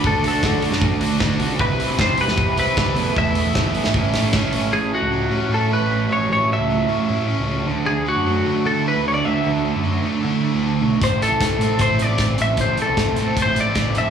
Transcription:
Already playing: A3 D5 F#5 D6
0.03 D2 D3 A3 D4 F#4 A4, kick
0.23 A3 D4 F#4, open hi-hat
0.28 A4
0.33 D2
0.43 D3 A3 D4 F#4, kick, snare
0.53 D3
0.62 A3 D4 F#4, open hi-hat
0.70 F#2, snare
0.82 kick
1.01 D2 A3 D4 F#4, open hi-hat
1.20 D2 D3 A3 D4 F#4, kick, snare
1.40 C#2 A3 D4 F#4, open hi-hat
1.59 C2 C3 E3 G3 C4 E4 G4 B4 E5 B5, kick
1.80 G3 C4 E4, open hi-hat
1.89 C2
1.98 C3 E3 G3 C4 E4 C5, kick, snare
2.10 C3
2.18 G3 C4 E4 B4, open hi-hat
2.28 E2, snare
2.38 kick
2.57 C2 G3 C4 E4 B4, open hi-hat
2.76 C2 C3 E3 G3 C4 E4, kick, snare
2.96 E2 B2 E3 A3 B3 E4 A4 B4, open hi-hat
3.16 E2 B2 E3 A3 B3 E5, kick
3.20 E4
3.35 A3 B3 E4, open hi-hat
3.46 E2
3.55 E3 A3 B3 E4, kick, snare
3.67 E3
3.75 E3 A3 B3 E4, open hi-hat
3.84 G#2, snare
3.94 A1 A2 E3 A3 C#5, kick
3.98 C#4 E4
4.14 A1 E4, snare, open hi-hat
4.18 A3 C#4
4.33 A1 A2 E3 A3 C#4 E4, kick, snare
4.53 A1 A3 C#4 E4, open hi-hat
4.72 A1 A2 E3 A3 C#4 E4 G#4
4.93 A2 F#4
5.02 C#2
5.12 F#3
5.30 A2 C#4
5.49 A2 E4
5.54 A4
5.71 C#4 B4
5.79 A1
5.90 A2
6.09 A1 F#3 C#5
6.29 A1 A2 E3 A3 C#4 E4
6.33 C#5
6.52 A2 E5
6.58 C#2
6.70 F#3
6.88 A2 C#4
7.08 A2 E4
7.28 C#4
7.38 C#2
7.47 A2
7.66 D2 D3 A3 D4 F#4
7.86 D2 D3 G#4
8.05 D3 F#4
8.16 F#2
8.26 F#3
8.45 D3 A3
8.65 D3 E4 A4
8.84 A3 B4
8.96 D2
9.03 D3
9.08 C#5
9.14 D5
9.23 D2 D3 F#3 A3 D4 F#4 E5
9.44 D2 D3
9.65 D3
9.76 F#2
9.84 F#3
10.03 D3 A3
10.23 D3 E4
10.44 A3
10.54 D2
10.63 D3
10.82 B1 F#3
11.00 A1 A2 E3 A3 C4 E4 A4 C5 E5 C6, kick, closed hi-hat
11.22 E3 A4, closed hi-hat
11.30 C2
11.41 A3, kick, snare, closed hi-hat
11.58 A2 C4, closed hi-hat
11.79 A2 E4 C5, kick, closed hi-hat
11.99 C4 D5, closed hi-hat
12.09 A1
12.18 E3, kick, snare, closed hi-hat
12.38 A1 A3 E5, closed hi-hat
12.57 A1 A2 E3 A3 C4 E4 C5, kick, closed hi-hat
12.77 E3, closed hi-hat
12.82 A4
12.88 C2
12.97 A3, kick, snare, closed hi-hat
13.16 A2 C4, closed hi-hat
13.37 A2 E4, kick, closed hi-hat
13.42 C5
13.56 C4, closed hi-hat
13.61 D5
13.67 A1
13.75 E3, kick, snare, closed hi-hat
13.95 F1 A3 E5, closed hi-hat

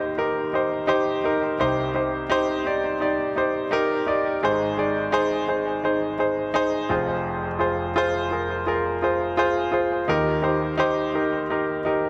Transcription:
Already playing: D#2 D#3 D#4 G4 A#4 C5
0.18 D#4 G4 A#4
0.53 D#4 G4 C5
0.87 D#4 G4 C5
1.24 D#4 G4 A#4
1.59 C2 C3 D#4 G4 C5
1.94 D#4 G4 C5
2.30 D#4 G4 C5
2.65 D#4 G4 D5
3.00 D#4 G4 D5
3.36 D#4 G4 C5
3.71 D#4 G4 A#4
4.07 D#4 G4 D5
4.43 G#1 G#2 D#4 G#4 C5
4.77 D#4 G#4 D5
5.12 D#4 G#4 C5
5.48 D#4 G#4 C5
5.84 D#4 G#4 C5
6.18 D#4 G#4 C5
6.54 D#4 G#4 C5
6.89 F1 F2 F4 G#4 C5
7.59 F4 G#4 C5
7.96 F4 G#4 C5
8.31 F4 G#4 A#4
8.66 F4 G#4 A#4
9.02 F4 G#4 C5
9.37 F4 G#4 C5
9.72 F4 G#4 C5
10.08 D#2 D#3 D#4 G4 A#4
10.42 D#4 G4 C5
10.77 D#4 G4 C5
11.14 D#4 G4 A#4
11.50 D#4 G4 A#4
11.85 D#4 G4 A#4

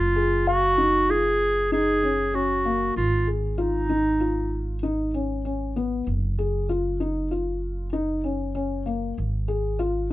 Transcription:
Already playing: F#1 F4
0.16 G#4
0.47 F#4 F5
0.78 D#4
1.09 F4 G#4
1.72 D#4 G#4
2.03 C#4
2.33 C#4 F#4
2.65 A#3
2.96 G#1 F4
3.27 G#4
3.58 D#4 F4
3.89 D#4
4.20 F4
4.83 D#4
5.14 C#4
5.45 C#4
5.76 B3
6.07 F#1
6.39 G#4
6.69 F4
7.00 D#4
7.31 F4
7.93 D#4
8.24 C#4
8.55 C#4
8.86 A#3
9.18 G#1
9.48 G#4
9.79 F4

